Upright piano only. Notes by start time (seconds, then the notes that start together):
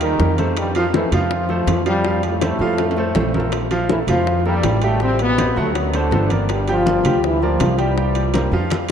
0.01 G3 G4 A#4
0.20 G3 G4 A#4
0.38 A3 A4 C5
0.75 F3 F4 F5
0.95 A3 A4 C5
1.13 F3 F4 F5
1.49 A3 A4 C5
1.86 F3 F4 F5
2.05 F3 F4 F5
2.42 A3 A4 C5
2.61 F3 F4 F5
2.97 A3 A4 C5
3.15 A3 A4 C5
3.35 C4 A4 A#4
3.71 F3 F4 F5
3.90 A3 A4 A#4
4.09 F3 F4 F5
4.46 A#3 A4 A#4
4.84 G3 G4 G5
5.02 G3 G4 G5
5.38 C4 C5 D#5
5.57 F#3 F#4 F#5
5.94 A3 A4 C5
6.13 A3 A4 C5
6.31 A#3 A#4 D5
6.69 G3 G4 G5
6.87 A#3 A#4 D5
7.05 G3 G4 G5
7.43 A#3 A#4 D5
7.78 G3 G4 G5
7.97 G3 G4 G5
8.34 A#3 A#4 C5
8.53 F3 F4 F5